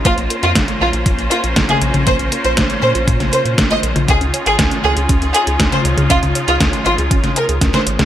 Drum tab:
HH |xxxxxx-xxxxxxxxx|xxxxxx-xxxxxxxxx|xxxxxx-xxxxxxxxx|xxxxxxxxxxxxxxxx|
SD |----o-------o---|----o----o--o---|----o-------o---|----o----o--oo-o|
T1 |-------------o-o|---------o-----o|-------------o-o|-o-------o-----o|
BD |o---o---o---o---|o---o---o---o---|o---o---o---o---|o---o---o---o---|